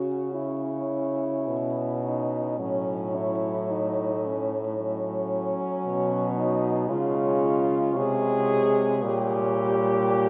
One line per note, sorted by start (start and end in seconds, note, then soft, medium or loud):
0.00 1.49 C#3 soft
0.00 0.30 C#4 soft
0.00 0.35 F#4 medium
0.00 0.30 C#5 soft
0.34 2.61 C#4 medium
0.34 2.03 E4 medium
0.34 2.55 C#5 soft
1.48 2.59 B2 medium
2.04 2.58 D#4 medium
2.59 5.55 A2 medium
2.59 4.52 F#3 medium
2.59 3.16 C#4 medium
2.59 4.48 C#5 medium
3.15 3.72 E4 medium
3.70 4.28 D#4 medium
4.26 4.61 C#4 medium
4.78 6.88 F#3 medium
4.78 6.39 C#4 medium
4.78 6.84 C#5 medium
5.86 6.90 B2 medium
6.37 6.91 D#4 medium
6.87 7.98 C#3 medium
6.87 7.94 G#3 medium
6.87 7.99 F4 medium
6.87 7.94 C#5 medium
7.95 9.05 C3 medium
7.95 9.05 G#3 medium
7.95 9.04 G#4 loud
7.95 9.01 C#5 medium
9.04 10.29 A#2 medium
9.04 10.29 G3 medium
9.04 10.29 G4 loud
9.04 10.29 C#5 medium